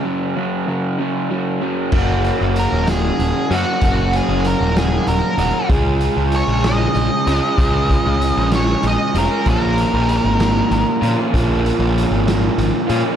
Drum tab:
CC |------|x-----|------|------|
HH |------|-xxxxx|xxxxxx|xxxxxx|
SD |------|---o--|---o--|---o--|
BD |------|o-----|o-----|o-----|

CC |------|------|------|
HH |xxxxxx|xxxxxx|xxxxxx|
SD |---o--|---o--|---o--|
BD |oo----|o-----|o-----|